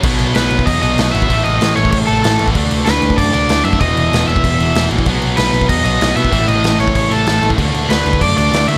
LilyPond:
<<
  \new Staff \with { instrumentName = "Overdriven electric guitar" } { \time 4/4 \key a \lydian \tempo 4 = 191 r4 b'4 dis''8 dis''4 e''8~ | e''8 dis''4 cis''8 cis''8 a'8 a'8. r16 | r4 b'4 d''8 d''4 e''8 | dis''4. e''8 e''4. r8 |
r4 b'4 dis''8 dis''4 e''8~ | e''8 dis''4 cis''8 cis''8 a'8 a'8. r16 | r4 b'4 d''8 d''4 e''8 | }
  \new Staff \with { instrumentName = "Distorted electric guitar" } { \clef bass \time 4/4 \key a \lydian <b, fis b>2~ <b, fis b>8 <b, fis b>8 <b, fis b>4 | <a, e a>2~ <a, e a>8 <a, e a>8 <a, e a>4 | <d a d'>2~ <d a d'>8 <d a d'>8 <d a d'>4 | <e, b, e>2~ <e, b, e>8 <e, b, e>8 <e, b, e>4 |
<b, fis b>2~ <b, fis b>8 <b, fis b>8 <b, fis b>4 | <a, e a>2~ <a, e a>8 <a, e a>8 <a, e a>4 | <d a d'>2~ <d a d'>8 <d a d'>8 <d a d'>4 | }
  \new Staff \with { instrumentName = "Distorted electric guitar" } { \clef bass \time 4/4 \key a \lydian <b, fis b>2.~ <b, fis b>8 <b, fis b>8 | <a, e a>2.~ <a, e a>8 <a, e a>8 | <d a d'>2.~ <d a d'>8 <d a d'>8 | <e, b, e>2.~ <e, b, e>8 <e, b, e>8 |
<b, fis b>2.~ <b, fis b>8 <b, fis b>8 | <a, e a>2.~ <a, e a>8 <a, e a>8 | <d a d'>2.~ <d a d'>8 <d a d'>8 | }
  \new Staff \with { instrumentName = "Picked electric bass" } { \clef bass \time 4/4 \key a \lydian b,,8 b,,8 b,,8 b,,8 e,8 b,,8 b,,8 gis,,8 | a,,8 a,,8 a,,8 a,,8 a,,8 a,,8 a,,8 a,,8 | d,8 d,8 d,8 d,8 fis,8 d,8 d,8 fis,8 | e,,8 e,,8 e,,8 e,,8 e,,8 e,,8 e,,8 ais,,8 |
b,,8 b,,8 b,,8 b,,8 e,8 b,,8 b,,8 b,8 | a,,8 a,,8 a,,8 a,,8 a,,8 a,,8 a,,8 a,,8 | d,8 d,8 d,8 d,8 fis,8 d,8 d,8 d8 | }
  \new DrumStaff \with { instrumentName = "Drums" } \drummode { \time 4/4 <cymc bd>8 cymc8 <cymc sn>8 cymc16 bd16 <cymc bd>8 cymc8 <cymc sn>8 cymc16 bd16 | <cymc bd>8 cymc8 <cymc sn>8 cymc16 bd16 <cymc bd>8 cymc8 <cymc sn>8 cymc16 bd16 | <cymc bd>8 cymc8 <cymc sn>8 cymc16 bd16 <cymc bd>8 cymc8 <cymc sn>8 cymc16 bd16 | <cymc bd>8 cymc8 <cymc sn>8 cymc16 bd16 <cymc bd>8 cymc8 <cymc sn>8 cymc16 bd16 |
<cymc bd>8 cymc8 <cymc sn>8 cymc16 bd16 <cymc bd>8 cymc8 <cymc sn>8 cymc16 bd16 | <cymc bd>8 cymc8 <cymc sn>8 cymc16 bd16 <cymc bd>8 cymc8 <cymc sn>8 cymc16 bd16 | <cymc bd>8 cymc8 <cymc sn>8 cymc16 bd16 <cymc bd>8 cymc8 <cymc sn>8 cymc8 | }
>>